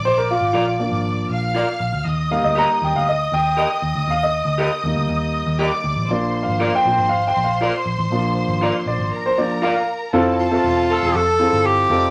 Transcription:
<<
  \new Staff \with { instrumentName = "String section" } { \time 4/4 \key bes \mixolydian \tempo 4 = 119 <d'' d'''>2~ <d'' d'''>8 <f'' f'''>4. | <ees'' ees'''>1~ | <ees'' ees'''>2. <d'' d'''>4 | <c'' c'''>1~ |
<c'' c'''>2 <bes' bes''>2 | \key f \major <a' a''>2. r8 <d'' d'''>8 | }
  \new Staff \with { instrumentName = "Clean electric guitar" } { \time 4/4 \key bes \mixolydian r4 <f' bes' d''>8 r4. <f' bes' d''>8 r8 | r4 <g' bes' ees''>8 r4. <g' bes' ees''>8 r8 | r4 <g' bes' ees''>8 r4. <g' bes' ees''>8 r8 | r4 <f' bes' d''>8 r4. <f' bes' d''>8 r8 |
r4 <f' bes' d''>8 r4. <f' bes' d''>8 r8 | \key f \major r1 | }
  \new Staff \with { instrumentName = "Tenor saxophone" } { \time 4/4 \key bes \mixolydian r1 | r1 | r1 | r1 |
r1 | \key f \major r8 f'4. a'4 g'4 | }
  \new Staff \with { instrumentName = "Horn section" } { \time 4/4 \key bes \mixolydian r1 | r1 | r1 | r1 |
r1 | \key f \major <a f' a'>16 r4 r16 <a f' a'>8. r4. r16 | }
  \new Staff \with { instrumentName = "Upright piano" } { \time 4/4 \key bes \mixolydian c''16 bes'16 f'4. r2 | r8 f''16 ees''16 bes''8 g''16 f''16 ees''8 g''4. | f''16 ees''4. r2 r16 | \tuplet 3/2 { d''4 f''8~ f''8 g''4 f''8 g''8 f''8~ } f''16 r8. |
r4. d''8. c''16 d''8 f''8 r8 | \key f \major <c' e' f' a'>8 r16 <c' f' a' e''>4~ <c' f' a' e''>16 r8 <c' e' f' aes' a'>4 <c' ees' f' a'>8 | }
  \new Staff \with { instrumentName = "Upright piano" } { \time 4/4 \key bes \mixolydian r4. <f bes d'>4. r4 | r8 <g bes ees'>4. r2 | r4. <g bes ees'>2~ <g bes ees'>8 | <f bes d'>4. <f bes d'>8 r2 |
<f bes d'>2~ <f bes d'>8 <f bes d'>8 r4 | \key f \major r1 | }
  \new Staff \with { instrumentName = "Picked electric bass" } { \clef bass \time 4/4 \key bes \mixolydian bes,,8. aes,,16 bes,,8. aes,,8. bes,,8. r16 bes,,16 d,16 | ees,8. d,8 r16 ees,16 d,8. ees,8. r16 ees,16 d,16 | ees,8. d,8 r16 ees,16 d,16 ees,8. ees,8 r16 d,16 a,,16 | bes,,8. aes,,8 r16 bes,,16 aes,,8. bes,,8. r16 bes,,16 a,,16 |
bes,,8. aes,,8 r16 bes,,16 aes,,16 r2 | \key f \major f,,4 e,,8. e,,16 f,,8. g,,8. f,,8 | }
>>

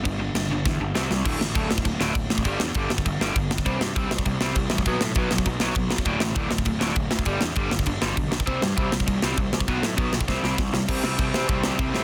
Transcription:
<<
  \new Staff \with { instrumentName = "Overdriven electric guitar" } { \clef bass \time 4/4 \key c \lydian \tempo 4 = 199 <g, d>8 <g, d>8 <g, d>8 <g, d>8 <g, d>8 <g, d>8 <c g c'>8 <c g>8 | <d, a, d>8 <d, a,>8 <d, a, d>8 <d, a,>8 <d, a,>8 <d, a, d>8 <d, a,>8 <d, a,>8 | <g, d g>8 <g, d>8 <g, d g>8 <g, d>8 <g, d>8 <g, d g>8 <g, d>8 <g, d>8 | <c g c'>8 <c g>8 <c g c'>8 <c g>8 <c g>8 <c g c'>8 <c g>8 <c g>8 |
<b, fis b>8 <b, fis>8 <b, fis b>8 <b, fis>8 <b, fis>8 <b, fis b>8 <b, fis>8 <b, fis>8 | <d, a, d>8 <d, a,>8 <d, a, d>8 <d, a,>8 <d, a,>8 <d, a, d>8 <d, a,>8 <d, a,>8 | <g, d g>8 <g, d>8 <g, d g>8 <g, d>8 <g, d>8 <g, d g>8 <g, d>8 <g, d>8 | <c g c'>8 <c g>8 <c g c'>8 <c g>8 <c g>8 <c g c'>8 <c g>8 <c g>8 |
<b, fis b>8 <b, fis>8 <b, fis b>8 <b, fis>8 <c g c'>8 <c g c'>8 <c g>8 <c g>8 | <c g c'>8 <c g c'>8 <c g c'>8 <c g c'>8 <c g c'>8 <c g c'>8 <c g c'>8 <c g c'>8 | }
  \new Staff \with { instrumentName = "Picked electric bass" } { \clef bass \time 4/4 \key c \lydian g,,4 g,,8 g,,8 e,8 g,,8 c,8 c,8 | d,,8 a,,8 d,,8 d,,8 d,,8 d,,8 d,,8 a,,8 | g,,8 e,8 g,,8 g,,8 g,,8 g,,8 g,,4 | c,8 g,8 c,8 c,8 c,8 c,8 c,8 a,,8 |
b,,8 a,8 b,,8 b,,8 b,,8 b,,8 b,,4 | d,,8 a,,8 d,,8 d,,8 d,,8 d,,8 d,,8 d,8 | g,,8 e,8 g,,8 g,,8 g,,8 g,,8 b,,4 | c,8 g,8 c,8 c,8 c,8 c,8 c,8 c,8 |
b,,8 a,8 b,,8 b,,8 c,8 c,8 c,4 | c,8 c,8 c,8 c8 c,4 c,8 a,8 | }
  \new DrumStaff \with { instrumentName = "Drums" } \drummode { \time 4/4 <cymc bd>4 <cymc sn>4 <bd sn>4 sn8 sn8 | <cymc bd>8 sn8 <cymc bd>8 sn16 bd16 <cymc bd>8 sn8 <cymc bd>8 sn16 bd16 | <cymc bd>8 sn8 <cymc bd>8 sn16 bd16 <cymc bd>8 sn8 <cymc bd>8 sn16 bd16 | <cymc bd>8 sn8 <cymc bd>8 sn16 bd16 <cymc bd>8 sn8 <cymc bd>8 sn16 bd16 |
<cymc bd>8 sn8 <cymc bd>8 sn16 bd16 <cymc bd>8 sn8 <cymc bd>8 sn16 bd16 | <cymc bd>8 sn8 <cymc bd>8 sn16 bd16 <cymc bd>8 sn8 <cymc bd>8 sn16 bd16 | <cymc bd>8 sn8 <cymc bd>8 sn16 bd16 <cymc bd>8 sn8 <cymc bd>8 sn16 bd16 | <cymc bd>8 sn8 <cymc bd>8 sn16 bd16 <cymc bd>8 sn8 <cymc bd>8 sn16 bd16 |
<cymc bd>8 sn8 <cymc bd>8 sn16 bd16 <bd sn>8 sn8 <bd sn>8 sn8 | <cymc bd>8 sn8 <cymc bd>8 sn8 <cymc bd>8 sn8 <cymc bd>8 sn8 | }
>>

